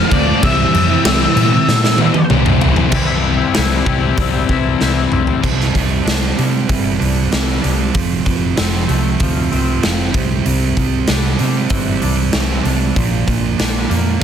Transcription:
Already playing: distorted electric guitar A3 C4 F4, string machine F4 C5 A5, lead electric guitar F5
0.09 fingered electric bass D2, distorted electric guitar F3 A3 C4 F4, lead electric guitar D5, kick, crash
0.26 distorted electric guitar A3 C4 F4
0.40 fingered electric bass C2, distorted electric guitar C3 E3 G3, string machine E4 G5, kick, crash
0.44 distorted electric guitar C4 E4, lead electric guitar E5
0.74 fingered electric bass F2, crash
0.89 distorted electric guitar G3 C4 E4
1.04 fingered electric bass C2, distorted electric guitar C3 E3 G3 C4 E4, snare, crash
1.20 distorted electric guitar G3 C4 E4
1.35 fingered electric bass A#2, distorted electric guitar E3 G3 C4 E4, crash
1.52 muted distorted electric guitar stroke
1.68 fingered electric bass A#2, snare
1.84 distorted electric guitar G3 C4 E4, snare
1.98 distorted electric guitar E3 G3 C4 E4, high tom
2.14 muted distorted electric guitar stroke, high tom
2.30 fingered electric bass C2, distorted electric guitar C3 E3 G3 C4 E4, mid tom
2.46 mid tom
2.61 distorted electric guitar E3 G3 C4 E4, floor tom
2.76 distorted electric guitar G3 C4 E4, floor tom
2.90 fingered electric bass C2, clean electric guitar C3 E3 G3 C4 E4, distorted electric guitar C3 G3 C4 E4, kick, crash
2.95 distorted electric guitar G4
3.06 clean electric guitar G3 C4 E4
3.38 clean electric guitar G3 C4 E4
3.54 fingered electric bass C2, clean electric guitar C3 E3 G3 C4 E4, snare, open hi-hat
3.85 fingered electric bass C2, clean electric guitar E3 G3 C4 E4, distorted electric guitar C4 E4 G4, kick
3.90 distorted electric guitar C3 G3
4.00 clean electric guitar G3 C4 E4
4.17 fingered electric bass C2, kick, open hi-hat
4.32 clean electric guitar G3 C4 E4
4.47 fingered electric bass C2, clean electric guitar E3 G3 C4 E4, kick
4.63 clean electric guitar G3 C4 E4
4.79 fingered electric bass C2, clean electric guitar C3 E3 G3 C4 E4, snare
5.10 fingered electric bass C2, clean electric guitar E3 G3 C4 E4, mid tom
5.25 clean electric guitar G3 C4 E4, floor tom
5.42 fingered electric bass C2, clean electric guitar C3, distorted electric guitar C3 G3 C4, kick, crash
5.61 snare
5.74 fingered electric bass C2, distorted electric guitar C3 G3 C4, kick, open hi-hat
6.04 fingered electric bass C2, distorted electric guitar C3 G3 C4, clean electric guitar D4, snare, open hi-hat
6.36 distorted electric guitar C3 G3 C4, fingered electric bass C3, clean electric guitar G3, open hi-hat
6.68 fingered electric bass G1, distorted electric guitar C3 G3 C4, clean electric guitar E3, kick, open hi-hat
6.98 fingered electric bass C2, distorted electric guitar C3 G3 C4, clean electric guitar D4, open hi-hat
7.31 fingered electric bass C2, distorted electric guitar C3 G3 C4, clean electric guitar E3, snare, open hi-hat
7.62 fingered electric bass C2, distorted electric guitar C3 G3 C4, clean electric guitar D4, open hi-hat
7.93 fingered electric bass F1, distorted electric guitar F2 C3 F3, clean electric guitar F2, kick, open hi-hat
8.25 fingered electric bass F1, distorted electric guitar F2 C3 F3, kick, open hi-hat
8.56 fingered electric bass F1, distorted electric guitar F2 C3 F3, clean electric guitar C4, snare, open hi-hat
8.88 fingered electric bass C2, distorted electric guitar F2 C3 F3, clean electric guitar A3, open hi-hat
9.19 fingered electric bass D2, distorted electric guitar F2 C3 F3, clean electric guitar F3, kick, open hi-hat
9.51 fingered electric bass C2, distorted electric guitar F2 C3 F3, clean electric guitar C4, open hi-hat
9.83 fingered electric bass F1, distorted electric guitar F2 C3 F3, clean electric guitar F3, snare, open hi-hat
10.14 fingered electric bass C2, clean electric guitar C3, distorted electric guitar C3 G3 C4, kick, open hi-hat
10.44 fingered electric bass C2, distorted electric guitar C3 G3 C4, clean electric guitar C3, open hi-hat
10.77 fingered electric bass C2, distorted electric guitar C3 G3 C4, kick, open hi-hat
11.07 fingered electric bass C2, distorted electric guitar C3 G3 C4, clean electric guitar D4, snare, open hi-hat
11.39 fingered electric bass C3, distorted electric guitar C3 G3 C4, clean electric guitar G3, open hi-hat
11.70 fingered electric bass G1, distorted electric guitar C3 G3 C4, clean electric guitar E3, kick, open hi-hat
12.01 fingered electric bass C2, distorted electric guitar C3 G3 C4, clean electric guitar D4, open hi-hat
12.32 fingered electric bass C2, distorted electric guitar C3 G3 C4, clean electric guitar E3, snare, open hi-hat
12.63 fingered electric bass C2, distorted electric guitar C3 G3 C4, clean electric guitar D4, open hi-hat
12.95 fingered electric bass A#1, clean electric guitar A#2, distorted electric guitar A#2 F3 A#3, kick, open hi-hat
13.27 fingered electric bass A#1, distorted electric guitar A#2 F3 A#3, kick, open hi-hat
13.58 fingered electric bass A#1, distorted electric guitar A#2 F3 A#3, clean electric guitar D4, snare, open hi-hat
13.89 fingered electric bass F2, distorted electric guitar A#2 F3 A#3, clean electric guitar A#3, open hi-hat
14.20 distorted electric guitar A#2 F3, clean electric guitar D3

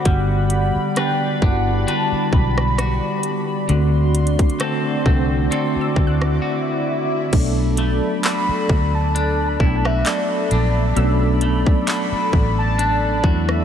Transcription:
Already playing: clean electric guitar C4 F#4, soft synth lead F#5, analog synth pad B5, synth pluck D6 A6
0.05 fingered electric bass G1, tine electric piano D3 G3 B3 F#4, clean electric guitar G3, analog synth pad G3 D5, kick, closed hi-hat, swell
0.50 closed hi-hat
0.76 muted fingered electric bass stroke
0.96 tine electric piano D3 G3 B3 G4, clean electric guitar D4 B4, soft synth lead G5, cross-stick, closed hi-hat
1.42 fingered electric bass G1, tine electric piano D3 G3 B3 E4, clean electric guitar D4, soft synth lead F#5, kick
1.50 tine electric piano F#4
1.87 clean electric guitar D4 F#4 B4, soft synth lead A5, closed hi-hat
2.12 muted fingered electric bass stroke
2.33 fingered electric bass B1, soft synth lead B5, kick
2.58 cross-stick
2.78 clean electric guitar F#4, cross-stick, closed hi-hat
3.23 closed hi-hat
3.69 fingered electric bass D2, clean electric guitar D3, tine electric piano D3 A3 C4 F#4, analog synth pad F#4 D5 C6, closed hi-hat
4.15 closed hi-hat
4.27 closed hi-hat
4.39 kick, closed hi-hat
4.50 closed hi-hat
4.60 tine electric piano D3 A3 C4 D4, clean electric guitar C4 F#4 A4, cross-stick, closed hi-hat
5.05 fingered electric bass C2, tine electric piano D3 A3 C4 F#4, clean electric guitar C4, kick
5.50 clean electric guitar C4 F#4 A4, synth pluck C6, analog synth pad D6, closed hi-hat
5.76 muted fingered electric bass stroke
5.81 synth pluck E6
5.96 fingered electric bass D2, kick
6.07 synth pluck F#6
6.22 cross-stick
6.42 clean electric guitar F#4
7.33 fingered electric bass B1, tine electric piano F#3 A3 B3 D4 A4, analog synth pad A4 D5 B5, kick, closed hi-hat, crash
7.77 clean electric guitar A3, closed hi-hat
8.24 clean electric guitar A3 D4 F#4, soft synth lead B5, synth pluck D6, clap, closed hi-hat
8.49 muted fingered electric bass stroke
8.69 fingered electric bass D2, kick
8.94 soft synth lead A5
9.15 clean electric guitar D4, closed hi-hat
9.49 soft synth lead B5
9.57 fingered electric bass B1, tine electric piano F#3 A3 B3 D4, clean electric guitar E4, soft synth lead A5, kick
9.62 tine electric piano A4
9.66 soft synth lead G5
9.76 soft synth lead A5
9.85 clean electric guitar F#4, soft synth lead E5, cross-stick
10.06 clean electric guitar A3 D4 F#4, soft synth lead D5, clap, closed hi-hat
10.51 fingered electric bass A#1, clean electric guitar D4, closed hi-hat
10.96 fingered electric bass B1, clean electric guitar B2, tine electric piano F#3 A3 B3 C#4 A4, synth pluck E6, closed hi-hat
11.04 tine electric piano D4
11.41 clean electric guitar A3, closed hi-hat
11.66 kick
11.87 clean electric guitar A3 D4 F#4, soft synth lead B5, clap, closed hi-hat
12.12 muted fingered electric bass stroke
12.33 fingered electric bass A1, kick
12.59 soft synth lead A5
12.79 clean electric guitar D4, closed hi-hat
13.24 fingered electric bass E2, tine electric piano F#3 A3 B3 D4 E4, clean electric guitar F#4, kick
13.49 soft synth lead E5, cross-stick

